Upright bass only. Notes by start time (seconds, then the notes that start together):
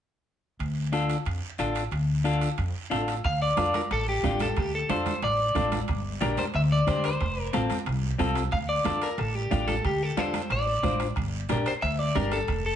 0.59 D2
1.26 F2
1.59 A1
1.91 D2
2.58 F2
2.91 A1
3.25 D2
3.57 F2
3.91 A1
4.24 A1
4.57 D2
4.89 F2
5.22 A1
5.56 A1
5.89 G1
6.21 A#1
6.54 D2
7.21 F1
7.54 A1
7.87 C2
8.20 C2
8.53 D2
8.85 F2
9.18 A1
9.52 A1
9.84 D2
10.17 F2
10.50 A1
10.83 A1
11.17 G1
11.49 A#1
11.82 D2
12.15 G1
12.48 F1